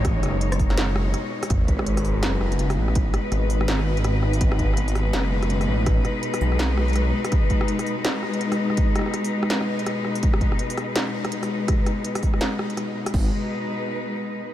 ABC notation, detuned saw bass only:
X:1
M:4/4
L:1/8
Q:"Swing 16ths" 1/4=165
K:G#m
V:1 name="Detuned saw bass" clef=bass
=A,,, F,,,4- F,,, z2 | G,,,4 F,,,3 =A,,,- | =A,,, z G,,,6 | G,,,4 F,,,3 =A,,,- |
=A,,, z2 B,,,4 z | z8 | z8 | z8 |
z8 | G,,, z6 z |]